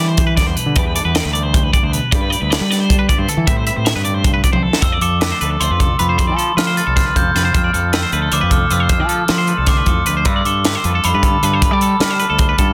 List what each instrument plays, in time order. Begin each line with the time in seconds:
Already playing: fingered electric bass E3, clean electric guitar E3 G3 D4 G4 B4
0.08 clean electric guitar C5
0.17 clean electric guitar G4, kick, closed hi-hat
0.27 clean electric guitar B4
0.36 fingered electric bass E2, clean electric guitar D4 D5, kick, snare, closed hi-hat
0.46 fingered electric bass E2, clean electric guitar C5
0.56 clean electric guitar B2 B4, closed hi-hat
0.66 fingered electric bass D3
0.75 fingered electric bass E2, clean electric guitar E3 D4 G4 B4 D5, kick, closed hi-hat
0.85 clean electric guitar B4
0.95 clean electric guitar A4 D5, closed hi-hat
1.04 fingered electric bass E2, clean electric guitar B4
1.15 clean electric guitar D5, snare, closed hi-hat
1.24 fingered electric bass D2, clean electric guitar B4
1.33 clean electric guitar G3 D5, closed hi-hat
1.43 clean electric guitar C5
1.54 clean electric guitar G4, kick, closed hi-hat
1.64 clean electric guitar B4
1.73 clean electric guitar D4 D5, kick, closed hi-hat
1.83 fingered electric bass D2, clean electric guitar C5
1.92 clean electric guitar B2 B4, closed hi-hat
2.11 fingered electric bass G2, clean electric guitar G3 F4 B4 D5, kick, closed hi-hat
2.21 clean electric guitar B4
2.30 clean electric guitar B4 D5, closed hi-hat
2.41 fingered electric bass D2, clean electric guitar B4
2.50 clean electric guitar D5, snare, closed hi-hat
2.60 fingered electric bass G3, clean electric guitar B4
2.69 clean electric guitar D4 D5, snare, closed hi-hat
2.80 clean electric guitar C5
2.89 clean electric guitar A4, kick, closed hi-hat
2.98 clean electric guitar B4
3.09 fingered electric bass G2, clean electric guitar F4 D5, kick, closed hi-hat
3.18 fingered electric bass G2, clean electric guitar C5
3.28 clean electric guitar D3 A4, closed hi-hat
3.37 fingered electric bass E3
3.46 clean electric guitar A2 C4 G4 B4 E5, fingered electric bass A2, kick, closed hi-hat
3.57 clean electric guitar C5
3.67 clean electric guitar B4 E5, closed hi-hat
3.76 fingered electric bass A2, clean electric guitar C5
3.85 clean electric guitar E5, snare, closed hi-hat
3.96 fingered electric bass G2, clean electric guitar B4
4.05 clean electric guitar A3 D5, closed hi-hat
4.14 clean electric guitar C5
4.24 clean electric guitar C3, kick, closed hi-hat
4.34 clean electric guitar B4
4.43 clean electric guitar D3 D5, kick, closed hi-hat
4.53 fingered electric bass C2, clean electric guitar C5, high tom
4.63 clean electric guitar E3 A4
4.73 snare
4.82 fingered electric bass F2, clean electric guitar F3 C5, glockenspiel E6, kick, closed hi-hat
4.92 clean electric guitar D5
5.01 fingered electric bass F2, clean electric guitar A4, glockenspiel D6, closed hi-hat
5.21 clean electric guitar C4 B4, snare, closed hi-hat
5.32 clean electric guitar D4 C5
5.41 fingered electric bass D2, clean electric guitar A4 B4, closed hi-hat
5.50 clean electric guitar A4
5.60 fingered electric bass D2, clean electric guitar F4 C5, glockenspiel C6, closed hi-hat
5.71 fingered electric bass F2, clean electric guitar B4
5.79 clean electric guitar C3 D4 A4, kick, closed hi-hat
5.99 fingered electric bass F2, clean electric guitar F4 B4, glockenspiel B5, closed hi-hat
6.09 clean electric guitar C5
6.17 clean electric guitar F3 C5, glockenspiel C6, kick, closed hi-hat
6.27 fingered electric bass F3, clean electric guitar D5
6.37 clean electric guitar A4, closed hi-hat
6.57 fingered electric bass F3, clean electric guitar A3 D4 B4, glockenspiel F6, snare, closed hi-hat
6.67 clean electric guitar C5
6.77 clean electric guitar A4 B4, glockenspiel A6, closed hi-hat
6.87 fingered electric bass C2, clean electric guitar A4
6.96 clean electric guitar F4 C5, glockenspiel F6, kick, snare, closed hi-hat
7.06 clean electric guitar B4
7.14 fingered electric bass F2, clean electric guitar C3 D4 A4, glockenspiel G6, kick, closed hi-hat
7.35 fingered electric bass F2, clean electric guitar F4 B4, glockenspiel A6, snare, closed hi-hat
7.45 clean electric guitar C5
7.53 fingered electric bass F2, clean electric guitar F3 C5, glockenspiel F6, kick, closed hi-hat
7.64 clean electric guitar D5
7.74 fingered electric bass F2, clean electric guitar A4, closed hi-hat
7.93 clean electric guitar A3 B4, glockenspiel E6, snare, closed hi-hat
8.03 clean electric guitar C5
8.12 fingered electric bass D2, clean electric guitar A4 B4, closed hi-hat
8.22 clean electric guitar A4
8.31 fingered electric bass D2, clean electric guitar F4 C5, glockenspiel D6, closed hi-hat
8.41 fingered electric bass F2, clean electric guitar B4
8.49 clean electric guitar C3 D4 A4, glockenspiel F6, kick, closed hi-hat
8.70 fingered electric bass F2, clean electric guitar F4 B4, glockenspiel E6, closed hi-hat
8.80 clean electric guitar C5
8.88 clean electric guitar F3 C5, kick, closed hi-hat
8.92 glockenspiel F6
9.00 fingered electric bass F3, clean electric guitar D5
9.09 clean electric guitar A4, closed hi-hat
9.28 fingered electric bass F3, clean electric guitar A3 D4 B4, glockenspiel C6, snare, closed hi-hat
9.38 clean electric guitar C5
9.47 clean electric guitar A4 B4, closed hi-hat
9.57 fingered electric bass C2, clean electric guitar A4
9.66 clean electric guitar D3 C5, glockenspiel D6, kick, snare, closed hi-hat
9.77 clean electric guitar B4
9.85 fingered electric bass F2, clean electric guitar E3 A4, kick, closed hi-hat
10.06 fingered electric bass D2, clean electric guitar F3 B4, closed hi-hat
10.17 clean electric guitar C5
10.25 fingered electric bass G2, clean electric guitar G3 B4, glockenspiel E6, kick, closed hi-hat
10.36 clean electric guitar D5
10.45 fingered electric bass G2, clean electric guitar A4, glockenspiel D6, closed hi-hat
10.64 clean electric guitar D4 F4 B4, snare, closed hi-hat
10.75 clean electric guitar C5
10.84 fingered electric bass F2, clean electric guitar A4 B4, closed hi-hat
10.95 clean electric guitar A4
11.04 fingered electric bass F2, clean electric guitar A4 C5, glockenspiel B5, closed hi-hat
11.14 fingered electric bass G2, clean electric guitar B4
11.23 clean electric guitar D3 F4 A4, glockenspiel B5, kick, closed hi-hat
11.43 fingered electric bass G2, clean electric guitar A4 B4, glockenspiel A5, closed hi-hat
11.53 clean electric guitar C5
11.62 clean electric guitar G3 B4, glockenspiel B5, kick, closed hi-hat
11.71 fingered electric bass G3, clean electric guitar D5
11.81 clean electric guitar A4, closed hi-hat
12.00 fingered electric bass G3, clean electric guitar D4 F4 B4, glockenspiel F6, snare, closed hi-hat
12.10 clean electric guitar C5
12.20 clean electric guitar A4 B4, closed hi-hat
12.30 fingered electric bass D2, clean electric guitar A4
12.38 clean electric guitar A4 C5, kick, closed hi-hat
12.49 clean electric guitar B4
12.58 fingered electric bass G2, clean electric guitar D3 F4 A4, kick, closed hi-hat